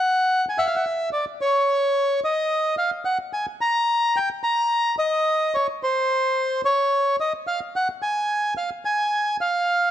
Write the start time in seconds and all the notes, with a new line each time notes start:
Already playing: F#5
0.49 G#5
0.58 E5 F#5
0.67 F5
0.76 F#5
1.13 D5
1.41 C#5
2.24 D#5
2.78 F5
3.05 F#5
3.33 G#5
3.61 A#5
4.17 G5
4.43 A#5
4.99 D#5
5.55 C#5
5.83 C5
6.65 C#5
7.20 D#5
7.47 F5
7.76 F#5
8.02 G#5
8.57 F5
8.85 G#5
9.41 F5